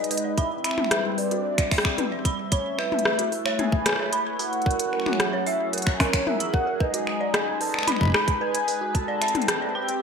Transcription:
Already playing: analog synth pad G#3 D#4 G#4 B4, soft synth lead D#5
0.04 closed hi-hat
0.11 synth bell B4, closed hi-hat, open hi-hat
0.17 closed hi-hat
0.24 synth bell D5
0.38 analog synth pad C4, soft synth lead E5, synth bell B5, kick, closed hi-hat
0.64 analog synth pad G3, synth bell B5, finger snap, closed hi-hat
0.71 finger snap
0.78 finger snap, high tom
0.84 finger snap
0.91 synth bell B4, cross-stick, closed hi-hat
1.06 analog synth pad D5
1.18 synth bell B4, soft synth lead D5, open hi-hat
1.31 synth bell F#4, analog synth pad E5, closed hi-hat
1.58 synth bell D5, finger snap, kick, closed hi-hat
1.71 synth bell E5, finger snap, kick, open hi-hat
1.74 open hi-hat
1.76 cross-stick, open hi-hat
1.78 open hi-hat
1.85 finger snap, kick
1.98 synth bell B4, closed hi-hat, high tom
2.12 synth bell D5
2.25 synth bell B5, kick, closed hi-hat
2.52 analog synth pad A3, soft synth lead C#5, synth bell B5, kick, closed hi-hat
2.79 synth bell B4, soft synth lead E5, finger snap
2.87 analog synth pad E4 B4
2.92 high tom
2.99 closed hi-hat
3.05 synth bell B4, cross-stick
3.19 synth bell F#4, closed hi-hat
3.32 open hi-hat
3.45 analog synth pad C#5, synth bell C#5, finger snap
3.59 synth bell E5, soft synth lead G#5, closed hi-hat, high tom
3.72 kick
3.86 synth bell B4, finger snap, cross-stick, closed hi-hat
3.89 cross-stick
3.93 cross-stick
3.96 synth bell C#5, cross-stick
3.99 cross-stick
4.03 cross-stick
4.06 cross-stick
4.09 synth bell B5, cross-stick, closed hi-hat
4.39 soft synth lead F#5, synth bell B5, open hi-hat
4.53 closed hi-hat
4.62 closed hi-hat
4.66 analog synth pad F#3, synth bell A#4, kick
4.71 analog synth pad C#4, closed hi-hat
4.80 closed hi-hat
4.93 synth bell A#4, finger snap
5.00 finger snap
5.06 synth bell F#4, analog synth pad G#4, finger snap, high tom
5.13 finger snap
5.20 cross-stick, closed hi-hat
5.33 synth bell C#5
5.46 synth bell E5, soft synth lead E5, open hi-hat
5.62 analog synth pad A#4
5.73 synth bell A#4, soft synth lead F#5, closed hi-hat
5.78 closed hi-hat
5.82 closed hi-hat
5.87 synth bell C#5, finger snap, kick
6.00 synth bell A#4, soft synth lead C#5, finger snap, kick, cross-stick, open hi-hat
6.13 finger snap, kick, closed hi-hat
6.27 synth bell A#4, soft synth lead E5, high tom
6.40 synth bell A#5, closed hi-hat
6.54 synth bell A#4, soft synth lead F#5, kick
6.67 synth bell A#4
6.80 analog synth pad G#3, synth bell B4, soft synth lead D#5, kick
6.87 analog synth pad D#4
6.94 synth bell F#4, closed hi-hat
7.07 finger snap
7.21 synth bell D5
7.34 synth bell D#5, soft synth lead G#5, cross-stick, closed hi-hat
7.48 analog synth pad B4
7.61 synth bell B4, soft synth lead A5, open hi-hat
7.63 open hi-hat
7.65 open hi-hat
7.67 open hi-hat
7.70 open hi-hat
7.72 synth bell D5, finger snap, open hi-hat
7.79 finger snap
7.83 finger snap
7.87 synth bell B5, soft synth lead B5, finger snap, closed hi-hat, high tom
7.92 finger snap
7.96 finger snap
8.01 kick
8.03 kick
8.05 kick
8.08 kick
8.10 kick
8.12 synth bell B5, finger snap, kick, cross-stick
8.28 kick, closed hi-hat
8.41 synth bell B4, soft synth lead G#5
8.55 closed hi-hat
8.68 synth bell B4, open hi-hat
8.81 synth bell F#4
8.95 analog synth pad C4, soft synth lead A5, kick, closed hi-hat
9.08 synth bell D5
9.21 synth bell E5, finger snap, closed hi-hat
9.27 analog synth pad G4, closed hi-hat
9.35 closed hi-hat, high tom
9.42 closed hi-hat
9.48 synth bell B4, analog synth pad E5, cross-stick, closed hi-hat
9.62 synth bell D5
9.75 analog synth pad D5, soft synth lead G5, synth bell B5
9.88 closed hi-hat

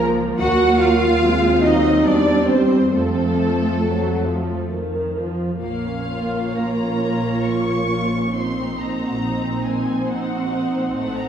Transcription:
Already playing: double bass section C#2, viola section F3
0.03 viola section A#3
0.39 double bass section D#2, viola section F#3, cello section F#4, violin section F#5
0.79 cello section F4, violin section F5
1.23 viola section G#3 C4
1.63 viola section F#3, cello section D#4, violin section D#5
2.05 double bass section E2, viola section G3, cello section D4, violin section D5
2.49 cello section C4, violin section C5
2.92 double bass section F2, viola section F3 C4, cello section A3, violin section A4
3.84 viola section F#3
4.28 viola section F3
4.73 viola section D#3
5.17 viola section F3
5.62 double bass section A#1, cello section A#2, violin section A#3 C#5 F5, viola section A#3 F4
5.86 violin section C#4
6.10 violin section F4
6.35 violin section C#4
6.58 violin section A#3 A#5
6.83 violin section C#4
7.04 violin section F4
7.26 violin section C#4
7.45 violin section A#3 C#6
7.72 violin section C#4
7.94 violin section F4
8.16 violin section C#4
8.35 violin section A#3 C6, viola section C4 D#4
8.39 violin section C5
8.60 violin section C4
8.80 violin section D#4 A#5
9.03 violin section F#4
9.24 violin section D#4
9.45 violin section C4
9.66 violin section A#3 G#5
9.89 violin section C4
10.10 violin section D#4 F#5
10.33 violin section F#4
10.55 violin section D#4
10.77 violin section C4
10.95 double bass section A1, cello section A2, violin section A3 F#5
11.17 violin section C4 A#5

